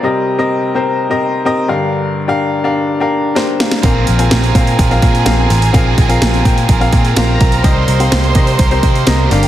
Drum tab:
HH |----------------|----------------|o-ooooooooooo-oo|o-ooooooooooo-oo|
SD |----------------|------------o-oo|----o-------o-o-|----o-------o-o-|
BD |----------------|----------------|o-----o-o-o-----|o-o---o-o-o---o-|

HH |o-ooooooooooo-oo|
SD |----o-------o-o-|
BD |o-----o-o-o-----|